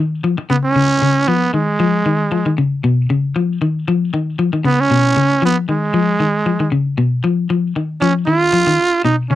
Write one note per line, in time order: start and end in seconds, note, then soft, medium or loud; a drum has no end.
0.00 0.21 D#3 medium
0.24 0.37 F3 medium
0.38 muted clean electric guitar stroke medium
0.50 0.73 C#3 medium
0.50 0.56 B3 medium
0.64 1.30 C#4 loud
0.76 0.99 C#3 medium
1.02 1.25 C#3 medium
1.28 1.51 F3 medium
1.28 1.53 B3 loud
1.54 1.77 D#3 medium
1.54 2.54 G#3 medium
1.80 2.03 F3 loud
2.06 2.29 D#3 medium
2.32 2.44 F3 medium
2.46 2.57 D#3 medium
2.58 2.81 C#3 medium
2.84 3.07 B2 medium
3.10 3.33 C#3 medium
3.36 3.59 F3 medium
3.62 3.85 D#3 medium
3.88 4.11 F3 loud
4.14 4.37 D#3 medium
4.39 4.52 F3 medium
4.53 4.64 D#3 medium
4.64 4.88 C#3 medium
4.64 4.82 B3 loud
4.81 5.44 C#4 loud
4.91 5.14 B2 medium
5.17 5.40 C#3 medium
5.42 5.65 F3 medium
5.42 5.57 B3 loud
5.69 5.92 D#3 medium
5.69 6.69 G#3 medium
5.94 6.17 F3 loud
6.20 6.43 D#3 medium
6.46 6.59 F3 medium
6.60 6.71 D#3 medium
6.72 6.95 C#3 medium
6.98 7.21 B2 medium
7.24 7.47 F3 medium
7.50 7.73 F3 medium
7.76 7.99 D#3 medium
8.01 8.25 F3 medium
8.01 8.13 C#4 medium
8.27 8.50 D#3 medium
8.27 9.01 F4 loud
8.53 8.66 F3 medium
8.67 8.77 D#3 medium
9.05 9.28 B2 medium
9.05 9.16 D#4 medium
9.31 9.35 C#3 medium
9.31 9.35 C#4 loud